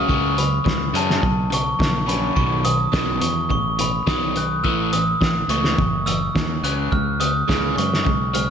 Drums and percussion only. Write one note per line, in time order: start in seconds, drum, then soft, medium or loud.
0.09 kick medium
0.38 closed hi-hat medium
0.66 kick loud
0.66 snare medium
0.95 closed hi-hat medium
1.10 snare medium
1.23 kick loud
1.52 closed hi-hat medium
1.80 kick loud
1.80 snare loud
2.09 closed hi-hat medium
2.37 kick medium
2.65 closed hi-hat medium
2.93 kick medium
2.93 snare loud
3.21 closed hi-hat medium
3.50 kick medium
3.79 closed hi-hat medium
4.07 kick loud
4.07 snare medium
4.36 closed hi-hat medium
4.65 kick medium
4.93 closed hi-hat medium
5.21 kick medium
5.21 snare medium
5.49 closed hi-hat medium
5.64 snare medium
5.79 kick medium
6.07 closed hi-hat medium
6.36 kick loud
6.36 snare loud
6.64 closed hi-hat medium
6.92 kick medium
7.21 closed hi-hat medium
7.49 kick medium
7.49 snare medium
7.78 closed hi-hat medium
7.94 snare medium
8.06 kick loud
8.35 closed hi-hat medium